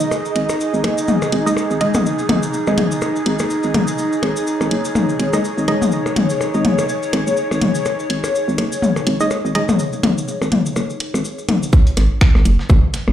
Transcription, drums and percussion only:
0.00 cabasa medium
0.11 percussion blips soft
0.11 cabasa medium
0.25 cabasa soft
0.36 closed hi-hat medium
0.49 percussion blips soft
0.49 cabasa medium
0.61 cabasa medium
0.74 cabasa soft
0.84 closed hi-hat medium
0.84 percussion blips soft
0.98 cabasa medium
1.08 mid tom medium
1.08 cabasa medium
1.22 percussion blips soft
1.22 cabasa soft
1.32 closed hi-hat medium
1.47 cabasa medium
1.57 percussion blips soft
1.57 cabasa medium
1.71 cabasa soft
1.81 closed hi-hat medium
1.94 mid tom medium
1.94 percussion blips soft
1.94 cabasa medium
2.06 cabasa medium
2.19 cabasa soft
2.29 closed hi-hat medium
2.29 mid tom medium
2.29 percussion blips soft
2.43 cabasa medium
2.53 cabasa medium
2.67 percussion blips soft
2.67 cabasa soft
2.78 closed hi-hat medium
2.78 mid tom medium
2.91 cabasa medium
3.02 percussion blips soft
3.02 cabasa medium
3.16 cabasa soft
3.26 closed hi-hat medium
3.39 percussion blips soft
3.39 cabasa medium
3.50 cabasa medium
3.63 cabasa soft
3.74 closed hi-hat medium
3.74 mid tom medium
3.74 percussion blips soft
3.87 cabasa medium
3.98 cabasa medium
4.13 cabasa soft
4.23 closed hi-hat medium
4.23 percussion blips soft
4.36 cabasa medium
4.47 cabasa medium
4.61 percussion blips soft
4.61 cabasa soft
4.71 closed hi-hat medium
4.85 cabasa medium
4.95 mid tom medium
4.95 percussion blips soft
4.95 cabasa medium
5.09 cabasa soft
5.20 closed hi-hat medium
5.33 percussion blips soft
5.33 cabasa medium
5.45 cabasa medium
5.58 cabasa soft
5.68 closed hi-hat medium
5.68 percussion blips soft
5.82 mid tom medium
5.82 cabasa medium
5.92 cabasa medium
6.06 percussion blips soft
6.06 cabasa soft
6.16 closed hi-hat medium
6.16 mid tom medium
6.30 cabasa medium
6.41 percussion blips soft
6.41 cabasa medium
6.54 cabasa soft
6.65 closed hi-hat medium
6.65 mid tom medium
6.78 percussion blips soft
6.78 cabasa medium
6.89 cabasa medium
7.03 cabasa soft
7.13 closed hi-hat medium
7.13 percussion blips soft
7.27 cabasa medium
7.37 cabasa medium
7.51 percussion blips soft
7.51 cabasa soft
7.62 closed hi-hat medium
7.62 mid tom medium
7.75 cabasa medium
7.85 percussion blips soft
7.85 cabasa medium
7.99 cabasa soft
8.10 closed hi-hat medium
8.24 percussion blips soft
8.24 cabasa medium
8.35 cabasa medium
8.49 cabasa soft
8.58 closed hi-hat medium
8.58 percussion blips soft
8.72 cabasa medium
8.82 mid tom medium
8.82 cabasa medium
8.96 percussion blips soft
8.96 cabasa soft
9.07 closed hi-hat medium
9.20 cabasa medium
9.31 percussion blips soft
9.31 cabasa medium
9.46 cabasa soft
9.55 closed hi-hat medium
9.69 mid tom medium
9.69 percussion blips soft
9.69 cabasa medium
9.79 cabasa medium
9.93 cabasa soft
10.03 closed hi-hat medium
10.03 mid tom medium
10.03 percussion blips soft
10.18 cabasa medium
10.28 cabasa medium
10.42 percussion blips soft
10.42 cabasa soft
10.52 closed hi-hat medium
10.52 mid tom medium
10.66 cabasa medium
10.76 percussion blips soft
10.76 cabasa medium
10.90 cabasa soft
11.00 closed hi-hat medium
11.14 percussion blips soft
11.14 cabasa medium
11.25 cabasa medium
11.39 cabasa soft
11.49 closed hi-hat medium
11.49 mid tom medium
11.49 percussion blips soft
11.63 cabasa medium
11.73 kick loud
11.73 shaker medium
11.87 closed hi-hat soft
11.97 snare soft
11.97 closed hi-hat medium
11.97 percussion blips soft
11.97 shaker medium
12.21 finger snap loud
12.21 kick loud
12.21 snare loud
12.21 shaker medium
12.35 snare soft
12.35 percussion blips soft
12.45 closed hi-hat loud
12.45 shaker medium
12.59 snare soft
12.70 kick loud
12.70 mid tom medium
12.70 percussion blips soft
12.70 shaker medium
12.94 snare soft
12.94 closed hi-hat loud
12.94 shaker medium
13.08 percussion blips soft

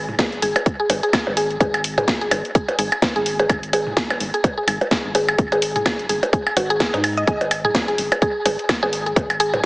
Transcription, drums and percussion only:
0.09 mid tom medium
0.19 kick loud
0.19 snare medium
0.19 closed hi-hat medium
0.19 percussion blips soft
0.32 closed hi-hat soft
0.42 open hi-hat medium
0.42 open hi-hat loud
0.56 closed hi-hat soft
0.56 percussion blips soft
0.56 percussion blips medium
0.66 kick loud
0.66 closed hi-hat medium
0.90 open hi-hat medium
0.90 open hi-hat loud
0.90 percussion blips soft
1.03 closed hi-hat soft
1.13 kick loud
1.13 snare medium
1.13 closed hi-hat medium
1.13 percussion blips medium
1.27 percussion blips soft
1.37 open hi-hat medium
1.50 closed hi-hat soft
1.60 kick loud
1.60 closed hi-hat medium
1.60 percussion blips soft
1.74 closed hi-hat soft
1.74 percussion blips medium
1.84 open hi-hat medium
1.98 closed hi-hat soft
1.98 mid tom medium
1.98 percussion blips soft
2.08 kick loud
2.08 snare medium
2.08 closed hi-hat medium
2.21 closed hi-hat soft
2.31 open hi-hat medium
2.31 open hi-hat loud
2.31 percussion blips soft
2.31 percussion blips medium
2.45 closed hi-hat soft
2.55 kick loud
2.55 closed hi-hat medium
2.68 closed hi-hat soft
2.68 percussion blips soft
2.79 open hi-hat medium
2.79 open hi-hat loud
2.92 closed hi-hat soft
2.92 percussion blips medium
3.02 kick loud
3.02 snare medium
3.02 closed hi-hat medium
3.02 percussion blips soft
3.16 closed hi-hat soft
3.26 open hi-hat medium
3.39 closed hi-hat soft
3.39 percussion blips soft
3.49 kick loud
3.49 closed hi-hat medium
3.49 percussion blips medium
3.63 closed hi-hat soft
3.73 open hi-hat medium
3.73 percussion blips soft
3.87 mid tom medium
3.97 kick loud
3.97 snare medium
3.97 closed hi-hat medium
4.10 closed hi-hat soft
4.10 percussion blips soft
4.10 percussion blips medium
4.20 open hi-hat medium
4.34 closed hi-hat soft
4.44 kick loud
4.44 closed hi-hat medium
4.44 percussion blips soft
4.68 open hi-hat medium
4.68 percussion blips medium
4.81 closed hi-hat soft
4.81 percussion blips soft
4.91 kick loud
4.91 snare medium
4.91 closed hi-hat medium
5.15 open hi-hat medium
5.15 percussion blips soft
5.28 closed hi-hat soft
5.28 percussion blips medium
5.38 kick loud
5.38 closed hi-hat medium
5.52 closed hi-hat soft
5.52 percussion blips soft
5.62 open hi-hat medium
5.76 closed hi-hat soft
5.76 mid tom medium
5.86 kick loud
5.86 snare medium
5.86 closed hi-hat medium
5.86 percussion blips soft
5.86 percussion blips medium
5.99 closed hi-hat soft
6.09 open hi-hat medium
6.23 closed hi-hat soft
6.23 percussion blips soft
6.33 kick loud
6.33 closed hi-hat medium
6.47 percussion blips medium
6.57 open hi-hat medium
6.57 percussion blips soft
6.70 closed hi-hat soft
6.80 kick loud
6.80 snare medium
6.80 closed hi-hat medium
6.94 closed hi-hat soft
6.94 percussion blips soft
7.04 open hi-hat medium
7.04 percussion blips medium
7.17 closed hi-hat soft
7.27 kick loud
7.27 closed hi-hat medium
7.41 closed hi-hat soft
7.41 percussion blips soft
7.51 open hi-hat medium
7.51 open hi-hat loud
7.51 percussion blips medium
7.65 mid tom loud
7.75 kick loud
7.75 snare loud
7.75 closed hi-hat medium
7.75 percussion blips soft
7.88 closed hi-hat soft
7.98 open hi-hat medium
8.12 closed hi-hat soft
8.12 percussion blips soft
8.12 percussion blips medium
8.22 kick loud
8.22 closed hi-hat medium
8.46 open hi-hat medium
8.46 open hi-hat loud
8.46 percussion blips soft
8.59 closed hi-hat soft
8.69 kick loud
8.69 snare loud
8.69 closed hi-hat medium
8.69 percussion blips medium
8.83 percussion blips soft
8.93 open hi-hat medium
8.93 open hi-hat loud
9.06 closed hi-hat soft
9.16 kick loud
9.16 closed hi-hat medium
9.16 percussion blips soft
9.30 closed hi-hat soft
9.30 percussion blips medium
9.40 open hi-hat medium
9.40 open hi-hat loud
9.54 closed hi-hat soft
9.54 mid tom loud
9.54 percussion blips soft

